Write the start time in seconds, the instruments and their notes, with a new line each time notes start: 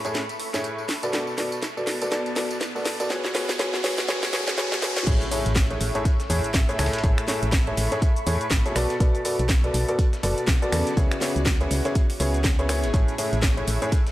Already playing: ambient pad A4 E5 B5 C#6, riser
0.05 upright piano A2 A3 E4 G#4 C#5, closed hi-hat, tambourine
0.14 snare, closed hi-hat, tambourine
0.29 closed hi-hat, tambourine
0.40 open hi-hat
0.54 upright piano A2 A3 E4 G#4 C#5, snare, closed hi-hat, tambourine
0.64 closed hi-hat, tambourine
0.78 tambourine
0.89 ambient pad B3, snare, open hi-hat
1.03 upright piano B2 B3 F#4 A4 D5, closed hi-hat, tambourine
1.13 upright piano B2 B3 F#4 A4 D5, snare, closed hi-hat, tambourine
1.27 tambourine
1.38 upright piano B2 B3 F#4 A4 D5, snare, open hi-hat
1.43 ambient pad D5
1.52 ambient pad F#4, closed hi-hat, tambourine
1.62 snare, closed hi-hat, tambourine
1.77 upright piano B2 B3 F#4 A4 D5, tambourine
1.87 snare, open hi-hat
2.02 upright piano B2 B3 F#4 A4 D5, closed hi-hat, tambourine
2.12 upright piano B2 B3 F#4 A4 D5, snare, closed hi-hat, tambourine
2.26 closed hi-hat, tambourine
2.36 upright piano B2 B3 F#4 A4 D5, snare, open hi-hat
2.51 closed hi-hat, tambourine
2.61 snare, closed hi-hat, tambourine
2.75 upright piano B2 B3 F#4 A4 D5, tambourine
2.85 snare, open hi-hat
3.00 upright piano B2 B3 F#4 A4 D5, closed hi-hat, tambourine
3.10 upright piano B2 B3 F#4 G#4 C#5, ambient pad C#4, snare, closed hi-hat, tambourine
3.24 ambient pad G#4, snare, tambourine
3.35 upright piano B2 B3 F#4 G#4 C#5, snare, open hi-hat
3.49 snare, closed hi-hat, tambourine
3.59 upright piano B2 B3 F#4 G#4 C#5, snare, closed hi-hat, tambourine
3.70 ambient pad C#5, snare
3.74 tambourine
3.84 upright piano B2 B3 F#4 G#4 C#5, snare, open hi-hat
3.98 ambient pad E5, snare, closed hi-hat, tambourine
4.08 upright piano B2 B3 F#4 G#4 C#5, snare, closed hi-hat, tambourine
4.23 snare, open hi-hat, tambourine
4.33 upright piano B2 B3 F#4 G#4 C#5, snare, open hi-hat
4.47 snare, closed hi-hat, tambourine
4.57 upright piano B2 B3 F#4 G#4 C#5, snare, closed hi-hat, tambourine
4.72 snare, tambourine
4.82 upright piano B2 B3 F#4 G#4 C#5, snare, open hi-hat
4.96 snare, closed hi-hat, tambourine
5.07 fm bass A1, upright piano A2 A3 E4 G#4 C#5, ambient pad A4, kick, closed hi-hat, crash, impact, shaker
5.21 closed hi-hat, shaker
5.31 upright piano A2 A3 E4 G#4 C#5, closed hi-hat, open hi-hat, shaker
5.46 fm bass A1, closed hi-hat, shaker
5.56 kick, snare, closed hi-hat, shaker
5.70 upright piano A2 A3 E4 G#4 C#5, closed hi-hat
5.79 fm bass A1, ambient pad B5, closed hi-hat, open hi-hat, shaker
5.95 upright piano A2 A3 E4 G#4 C#5, closed hi-hat, shaker
5.99 ambient pad C#6
6.05 kick, closed hi-hat, shaker
6.20 snare, closed hi-hat, shaker
6.30 fm bass E2, upright piano A2 A3 E4 G#4 C#5, closed hi-hat, open hi-hat, shaker
6.44 closed hi-hat, shaker
6.54 fm bass A1, kick, snare, closed hi-hat, shaker
6.69 upright piano A2 A3 E4 G#4 C#5, closed hi-hat, shaker
6.79 fm bass C#2, upright piano A2 A3 E4 G#4 C#5, finger snap, snare, closed hi-hat, open hi-hat, shaker
6.86 snare, closed hi-hat
6.93 snare, closed hi-hat, shaker
6.99 snare, closed hi-hat
7.04 fm bass A1, upright piano A2 A3 E4 G#4 C#5, kick, closed hi-hat, shaker
7.18 finger snap, closed hi-hat, shaker
7.28 upright piano A2 A3 E4 G#4 C#5, snare, closed hi-hat, open hi-hat, shaker
7.43 fm bass A1, closed hi-hat, shaker
7.52 kick, snare, closed hi-hat, shaker
7.67 upright piano A2 A3 E4 G#4 C#5, closed hi-hat
7.77 fm bass A1, snare, closed hi-hat, open hi-hat, shaker
7.92 upright piano A2 A3 E4 G#4 C#5, snare, closed hi-hat, shaker
8.02 kick, closed hi-hat, shaker
8.16 closed hi-hat, shaker
8.27 fm bass E2, upright piano A2 A3 E4 G#4 C#5, closed hi-hat, open hi-hat, shaker
8.41 closed hi-hat, shaker
8.51 fm bass A1, kick, snare, closed hi-hat, shaker
8.66 upright piano B2 A3 E4 G#4 C#5, closed hi-hat, shaker
8.76 fm bass B1, upright piano B2 B3 F#4 A4 D5, ambient pad B3, finger snap, closed hi-hat, open hi-hat, shaker
8.90 ambient pad F#4, snare, closed hi-hat, shaker
9.00 fm bass B1, upright piano B2 B3 F#4 A4 D5, kick, closed hi-hat, shaker
9.15 closed hi-hat, shaker
9.25 upright piano B2 B3 F#4 A4 D5, closed hi-hat, open hi-hat, shaker
9.37 fm bass B1, ambient pad D5, closed hi-hat, shaker
9.49 kick, snare, closed hi-hat, shaker
9.64 upright piano B2 B3 F#4 A4 D5, closed hi-hat
9.74 fm bass B1, closed hi-hat, open hi-hat, shaker
9.88 upright piano B2 B3 F#4 A4 D5, closed hi-hat, shaker
9.99 kick, closed hi-hat, shaker
10.13 snare, closed hi-hat, shaker
10.23 fm bass F#1, upright piano B2 B3 F#4 A4 D5, closed hi-hat, open hi-hat, shaker
10.38 closed hi-hat, shaker
10.47 fm bass B1, kick, snare, closed hi-hat, shaker
10.62 upright piano B2 B3 F#4 A4 D5, closed hi-hat, shaker
10.72 fm bass E2, upright piano C#3 B3 F#4 A4 D5, finger snap, closed hi-hat, open hi-hat, shaker
10.87 snare, closed hi-hat, shaker
10.97 fm bass C#2, upright piano C#3 B3 E4 G#4 C#5, ambient pad C#4, kick, closed hi-hat, shaker
11.07 ambient pad G#4
11.12 finger snap, closed hi-hat, shaker
11.21 upright piano C#3 B3 E4 G#4 C#5, snare, closed hi-hat, open hi-hat, shaker
11.36 fm bass C#2, closed hi-hat, shaker
11.46 ambient pad C#5, kick, snare, closed hi-hat, shaker
11.61 upright piano C#3 B3 E4 G#4 C#5, closed hi-hat, shaker
11.71 fm bass C#2, snare, closed hi-hat, open hi-hat, shaker
11.85 upright piano C#3 B3 E4 G#4 C#5, ambient pad E5, snare, closed hi-hat, shaker
11.95 kick, closed hi-hat, shaker
12.10 open hi-hat, shaker
12.20 fm bass C#2, upright piano C#3 B3 E4 G#4 C#5, closed hi-hat, open hi-hat, shaker
12.34 closed hi-hat, shaker
12.44 kick, snare, closed hi-hat, shaker
12.59 upright piano C#3 B3 E4 G#4 C#5, closed hi-hat, shaker
12.69 upright piano B3 E4 G#4 C#5, finger snap, closed hi-hat, open hi-hat, shaker
12.84 fm bass G#1, snare, closed hi-hat, shaker
12.94 fm bass A1, upright piano A2 A3 E4 G#4 C#5, ambient pad A4, kick, closed hi-hat, shaker
13.08 closed hi-hat, shaker
13.18 upright piano A2 A3 E4 G#4 C#5, closed hi-hat, open hi-hat, shaker
13.23 ambient pad B5
13.33 fm bass A1, closed hi-hat, shaker
13.41 ambient pad C#6, kick, snare, closed hi-hat, shaker
13.57 upright piano A2 A3 E4 G#4 C#5, closed hi-hat
13.67 fm bass A1, closed hi-hat, open hi-hat, shaker
13.82 upright piano A2 A3 E4 G#4 C#5, closed hi-hat, shaker
13.92 kick, closed hi-hat, shaker
14.07 snare, closed hi-hat, shaker